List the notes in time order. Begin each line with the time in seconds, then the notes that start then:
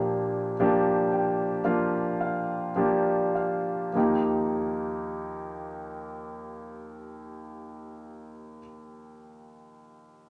Already playing: A#1 A#2 F3 A#3 D4 G4
0.60 F3 A#3 D4 G4
1.12 G5
1.64 F3 A#3 D4 F4 F5
2.21 F5
2.76 F3 A#3 D4 G4 D5
3.35 F5
3.93 D#2 F3 A#3 D#4
3.97 G4